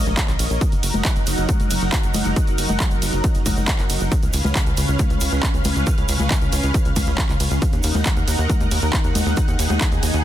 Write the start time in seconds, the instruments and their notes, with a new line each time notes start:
Already playing: analog synth pad A#3 A#4 C#5 D#5
0.06 analog synth bass A#1, closed hi-hat
0.17 kick, clap, closed hi-hat, shaker
0.28 analog synth bass A#1, clap, closed hi-hat, shaker
0.39 analog synth bass A#1, open hi-hat, ride, shaker
0.50 analog synth bass A#1, closed hi-hat, shaker
0.61 analog synth pad F#3 D#4 A#4 F#5, kick, closed hi-hat, shaker
0.72 analog synth bass F#1, closed hi-hat, shaker
0.83 analog synth bass F#1, open hi-hat, ride, shaker
0.94 analog synth bass F#1, closed hi-hat, high conga, shaker
1.05 kick, clap, closed hi-hat, shaker
1.16 analog synth bass F#1, closed hi-hat, shaker
1.27 analog synth bass F#1, open hi-hat, ride, shaker
1.37 analog synth bass F#1, closed hi-hat, shaker
1.49 kick, closed hi-hat, high conga, shaker
1.60 analog synth bass F#1, closed hi-hat, shaker
1.70 analog synth bass F#1, open hi-hat, ride, shaker
1.81 analog synth bass F#1, closed hi-hat, shaker
1.92 kick, clap, closed hi-hat, shaker
2.03 analog synth bass F#1, closed hi-hat, shaker
2.14 analog synth bass F#1, open hi-hat, ride, high conga, shaker
2.25 analog synth bass F#1, closed hi-hat, shaker
2.36 kick, closed hi-hat, shaker
2.47 analog synth bass F#1, closed hi-hat, shaker
2.58 analog synth bass F#1, open hi-hat, ride, shaker
2.69 analog synth bass F#1, high conga, shaker
2.80 kick, clap, closed hi-hat, shaker
2.91 analog synth bass F#1, closed hi-hat, shaker
3.02 analog synth bass F#1, open hi-hat, ride, shaker
3.13 analog synth bass F#1, closed hi-hat, shaker
3.24 kick, closed hi-hat, shaker
3.34 analog synth bass F#1, closed hi-hat, shaker
3.46 analog synth bass F#1, kick, open hi-hat, ride, high conga, shaker
3.57 analog synth bass F#1, closed hi-hat, shaker
3.67 kick, clap, closed hi-hat, shaker
3.79 analog synth bass F#1, clap, closed hi-hat, shaker
3.90 analog synth bass F#1, open hi-hat, ride, shaker
4.00 analog synth bass F#1, closed hi-hat, shaker
4.12 analog synth pad C#3 C#4 B4 F5, kick, closed hi-hat, shaker
4.23 analog synth bass C#2, closed hi-hat, shaker
4.33 analog synth bass C#2, open hi-hat, ride, shaker
4.45 analog synth bass C#2, closed hi-hat, high conga, shaker
4.55 kick, clap, closed hi-hat, shaker
4.66 analog synth bass C#2, closed hi-hat, shaker
4.77 analog synth bass C#2, open hi-hat, ride, shaker
4.88 analog synth bass C#2, closed hi-hat, shaker
4.99 kick, closed hi-hat, high conga, shaker
5.10 analog synth bass C#2, closed hi-hat, shaker
5.20 analog synth bass C#2, open hi-hat, ride, shaker
5.32 analog synth bass C#2, closed hi-hat, shaker
5.43 kick, clap, closed hi-hat, shaker
5.54 analog synth bass C#2, closed hi-hat, shaker
5.64 analog synth bass C#2, open hi-hat, ride, high conga, shaker
5.76 analog synth bass C#2, closed hi-hat, shaker
5.86 kick, closed hi-hat, shaker
5.98 analog synth bass C#2, closed hi-hat, shaker
6.08 analog synth bass C#2, open hi-hat, ride, shaker
6.20 analog synth bass C#2, closed hi-hat, high conga, shaker
6.31 kick, clap, closed hi-hat, shaker
6.41 analog synth bass C#2, closed hi-hat, shaker
6.52 analog synth bass C#2, open hi-hat, ride, shaker
6.63 analog synth bass C#2, closed hi-hat, shaker
6.74 kick, closed hi-hat, shaker
6.85 analog synth bass C#2, closed hi-hat, shaker
6.96 analog synth bass C#2, kick, open hi-hat, ride, high conga, shaker
7.06 analog synth bass C#2, closed hi-hat, shaker
7.18 kick, clap, closed hi-hat, shaker
7.29 analog synth bass C#2, clap, closed hi-hat, shaker
7.40 analog synth bass C#2, open hi-hat, ride, shaker
7.51 analog synth bass C#2, closed hi-hat, shaker
7.62 analog synth pad D#3 D#4 A#4 F#5, kick, closed hi-hat, shaker
7.72 analog synth bass D#2, closed hi-hat, shaker
7.83 analog synth bass D#2, open hi-hat, ride, shaker
7.95 analog synth bass D#2, closed hi-hat, high conga, shaker
8.05 kick, clap, closed hi-hat, shaker
8.16 analog synth bass D#2, closed hi-hat, shaker
8.28 analog synth bass D#2, open hi-hat, ride, shaker
8.39 analog synth bass D#2, closed hi-hat, shaker
8.50 kick, closed hi-hat, high conga, shaker
8.60 analog synth bass D#2, closed hi-hat, shaker
8.71 analog synth bass D#2, open hi-hat, ride, shaker
8.82 analog synth bass D#2, closed hi-hat, shaker
8.93 kick, clap, closed hi-hat, shaker
9.04 analog synth bass D#2, closed hi-hat, shaker
9.15 analog synth bass D#2, open hi-hat, ride, high conga, shaker
9.26 analog synth bass D#2, closed hi-hat, shaker
9.37 analog synth pad G#4, kick, closed hi-hat, shaker
9.48 analog synth bass D#2, closed hi-hat, shaker
9.59 analog synth bass D#2, open hi-hat, ride, shaker
9.70 analog synth bass D#2, closed hi-hat, high conga, shaker
9.81 kick, clap, closed hi-hat, shaker
9.92 analog synth bass D#2, closed hi-hat, shaker
10.03 analog synth bass D#2, open hi-hat, ride, shaker
10.13 analog synth bass D#2, closed hi-hat, shaker